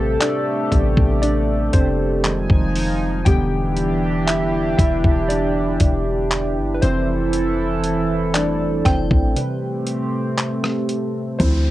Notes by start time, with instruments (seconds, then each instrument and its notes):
Already playing: 808-style bass A1, synth keys C3 G3 C4 B4 C5, analog synth pad A3 G4 A4
0.20 synth keys D4 D5, clap, closed hi-hat
0.72 808-style bass A1, synth keys C3 G3 B3, kick, closed hi-hat
0.97 808-style bass A1, kick
1.22 synth keys D4 D5, closed hi-hat
1.73 808-style bass F1, synth keys C4 C5, kick, closed hi-hat
2.24 synth keys D#3 G3 G#3, analog synth pad F3 D#4 G#5, clap, closed hi-hat
2.50 808-style bass F1, kick
2.75 open hi-hat
3.25 808-style bass E1, synth keys D3 G3 B3 G4 G5, analog synth pad E3 D4 G4, kick, closed hi-hat
3.77 closed hi-hat
4.27 synth keys E4 E5, clap, closed hi-hat
4.78 808-style bass E1, synth keys E4 E5, kick, closed hi-hat
5.04 808-style bass E1, kick
5.29 synth keys D4 D5, closed hi-hat
5.80 808-style bass E1, kick, closed hi-hat
6.31 clap, closed hi-hat
6.57 808-style bass G1
6.74 synth keys B4
6.82 808-style bass F1, analog synth pad E3 E4 A4, synth keys C4 C5, closed hi-hat
7.33 closed hi-hat
7.84 closed hi-hat
8.34 synth keys E3 G3 A3 D4 D5, clap, closed hi-hat
8.85 808-style bass F1, synth keys C4 C5, synth bell G5, kick, cross-stick, closed hi-hat
9.11 808-style bass A1, kick
9.36 synth keys C3 G3 B4, analog synth pad A3 C4 G4, closed hi-hat
9.87 closed hi-hat
10.38 clap, closed hi-hat
10.64 cross-stick
10.89 closed hi-hat
11.39 808-style bass D2, analog synth pad C3 D3 F3, synth keys F3 C4 E4 C5, kick, closed hi-hat, downlifter